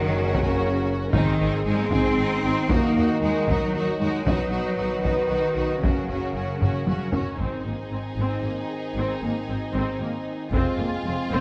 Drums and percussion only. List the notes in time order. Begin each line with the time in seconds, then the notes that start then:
0.35 taiko
1.13 taiko
1.91 taiko
2.70 taiko
3.48 taiko
4.27 taiko
5.05 taiko
5.83 taiko
6.61 taiko low-mid
6.88 taiko high
7.13 taiko low
7.39 taiko
10.53 taiko